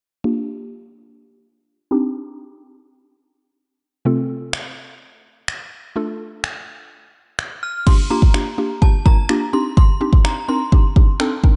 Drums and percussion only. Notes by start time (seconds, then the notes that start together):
4.53 finger snap
5.48 finger snap
6.44 finger snap
7.39 finger snap
7.87 kick, crash
8.22 kick
8.34 finger snap
8.82 kick
9.06 kick
9.29 finger snap
9.77 kick
10.13 kick
10.25 finger snap
10.72 kick
10.96 kick
11.20 finger snap
11.44 kick